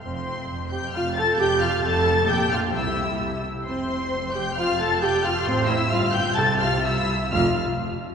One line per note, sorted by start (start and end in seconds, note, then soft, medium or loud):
0.02 0.44 F1 medium
0.02 0.43 F2 medium
0.02 0.68 C4 medium
0.02 0.69 C5 medium
0.02 0.68 C6 loud
0.48 0.89 F1 medium
0.48 0.89 F2 medium
0.71 0.79 G4 medium
0.71 0.95 G5 medium
0.71 0.94 G6 loud
0.93 1.34 F1 loud
0.93 1.34 F2 loud
0.93 1.03 F4 loud
0.93 1.17 F5 loud
0.93 1.16 F6 loud
1.16 1.38 A4 loud
1.16 1.41 A5 loud
1.16 1.38 A6 loud
1.38 1.78 F1 loud
1.38 1.79 F2 loud
1.38 1.61 G4 loud
1.38 1.48 G5 loud
1.38 1.61 G6 loud
1.61 1.84 F4 loud
1.61 1.84 F5 loud
1.61 1.84 F6 loud
1.83 2.25 F1 loud
1.83 2.26 F2 loud
1.83 2.28 A4 loud
1.83 2.28 A5 loud
1.83 2.28 A6 loud
2.27 2.74 A#1 loud
2.27 2.75 A#2 loud
2.27 2.51 G4 loud
2.27 2.51 G5 loud
2.27 2.52 G6 loud
2.51 2.74 F4 medium
2.51 2.75 F5 loud
2.51 2.59 F6 loud
2.74 3.46 C2 medium
2.74 3.46 C3 medium
2.74 3.42 E4 medium
2.74 3.43 E5 medium
2.74 3.42 E6 loud
3.66 5.43 F1 loud
3.66 5.43 F2 medium
3.66 4.30 C4 loud
3.66 4.31 C5 loud
3.66 4.31 C6 loud
4.34 4.42 G4 loud
4.34 4.58 G5 loud
4.34 4.57 G6 loud
4.57 4.80 F4 loud
4.57 4.80 F5 loud
4.57 4.79 F6 loud
4.80 5.02 A4 loud
4.80 5.03 A5 loud
4.80 5.02 A6 loud
5.02 5.24 G4 loud
5.02 5.25 G5 loud
5.02 5.25 G6 loud
5.24 5.32 F4 loud
5.24 5.48 F5 loud
5.24 5.47 F6 loud
5.47 5.90 A1 loud
5.47 5.91 A2 loud
5.47 5.69 C4 loud
5.47 5.69 C5 loud
5.47 5.69 C6 loud
5.68 5.91 E4 loud
5.68 5.92 E5 loud
5.68 5.91 E6 loud
5.91 6.36 G1 loud
5.91 6.36 G2 loud
5.91 6.13 F4 loud
5.91 6.13 F5 loud
5.91 6.14 F6 loud
6.13 6.21 G4 loud
6.13 6.36 G5 loud
6.13 6.36 G6 loud
6.35 7.09 C2 loud
6.35 7.10 C3 loud
6.35 6.45 A4 loud
6.35 6.43 A5 loud
6.35 6.60 A6 loud
6.60 6.68 F4 loud
6.60 6.83 F5 loud
6.60 6.84 F6 loud
6.83 7.31 E4 medium
6.83 7.31 E5 loud
6.83 7.32 E6 loud
7.32 7.58 F1 loud
7.32 7.59 F2 loud
7.32 7.58 F4 loud
7.32 7.59 F5 loud
7.32 7.59 F6 loud